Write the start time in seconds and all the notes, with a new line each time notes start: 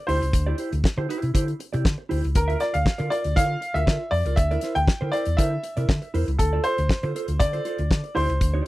0.07 D2 E4 G4 C5, open hi-hat
0.22 C#2, muted clean electric guitar stroke, closed hi-hat
0.33 D2, muted clean electric guitar stroke, kick, closed hi-hat
0.46 E4 G4 D5
0.58 E4 G4 C5, closed hi-hat
0.72 D2, muted clean electric guitar stroke, closed hi-hat
0.84 muted clean electric guitar stroke, kick, snare
0.97 D3 E4 G4 C5
1.09 E4 G4 C5, closed hi-hat
1.22 C3, muted clean electric guitar stroke, closed hi-hat
1.34 D3 E4 G4 C5, kick, closed hi-hat
1.47 muted clean electric guitar stroke, closed hi-hat
1.59 muted clean electric guitar stroke, closed hi-hat
1.73 C3 E4 G4 D5, closed hi-hat
1.85 D3, kick, snare
1.98 muted clean electric guitar stroke
2.09 D2 E4 G4 C5, open hi-hat
2.23 C#2, muted clean electric guitar stroke, closed hi-hat
2.35 D2 A#4, muted clean electric guitar stroke, kick, closed hi-hat
2.48 F4 A#4 E5, closed hi-hat
2.59 F4 D5, snare, closed hi-hat
2.73 D2 F5, muted clean electric guitar stroke, closed hi-hat
2.85 muted clean electric guitar stroke, kick, snare
2.98 D3 F4 A#4 D5, closed hi-hat
3.10 F4 A#4 D5, closed hi-hat
3.24 D2, muted clean electric guitar stroke, closed hi-hat
3.36 D3 F4 A#4 D5 F5, kick, closed hi-hat
3.49 muted clean electric guitar stroke
3.61 muted clean electric guitar stroke, closed hi-hat
3.74 D2 F4 A#4 E5, closed hi-hat
3.86 D3 F4 A#4 D5, kick, snare
4.00 muted clean electric guitar stroke
4.11 F2 D5, muted clean electric guitar stroke, open hi-hat
4.25 C#2 F4 A#4 D5, closed hi-hat
4.36 D2 E5, muted clean electric guitar stroke, kick, closed hi-hat
4.51 E4 A#4 D5, closed hi-hat
4.61 E4 A#4 C5, snare, closed hi-hat
4.75 D2 G5, muted clean electric guitar stroke, closed hi-hat
4.88 muted fingered electric bass stroke, muted clean electric guitar stroke, kick, snare
5.01 D3 E4 A#4 C5
5.12 E4 A#4 C5 D5, closed hi-hat
5.25 E2, muted clean electric guitar stroke, closed hi-hat
5.37 D3 E4 A#4 C5 E5, kick, closed hi-hat
5.52 muted clean electric guitar stroke
5.63 muted clean electric guitar stroke, closed hi-hat
5.77 C3 E4 A#4 D5, closed hi-hat
5.89 D3, kick, snare
6.02 muted clean electric guitar stroke, closed hi-hat
6.14 E2 E4 A#4 C5, open hi-hat
6.28 C#2, muted clean electric guitar stroke, closed hi-hat
6.39 D2 A4, muted clean electric guitar stroke, kick, closed hi-hat
6.53 F4 A4 D5
6.64 F4 A4 C5, closed hi-hat
6.78 D2, muted clean electric guitar stroke, closed hi-hat
6.89 muted clean electric guitar stroke, muted fingered electric bass stroke, kick, snare
7.03 D3 F4 A4 C5, closed hi-hat
7.15 F4 A4 C5, closed hi-hat
7.28 D2, muted clean electric guitar stroke, closed hi-hat
7.40 D3 D5, muted clean electric guitar stroke, kick, closed hi-hat
7.53 F4 A4 C5, closed hi-hat
7.65 F4 A4 C5, closed hi-hat
7.78 D2, muted clean electric guitar stroke, closed hi-hat
7.91 D3, kick, snare
8.04 muted clean electric guitar stroke, closed hi-hat
8.15 D2 E4 G4 C5, open hi-hat
8.28 C#2, muted clean electric guitar stroke, closed hi-hat
8.40 D2, muted clean electric guitar stroke, kick, closed hi-hat
8.54 E4 G4 D5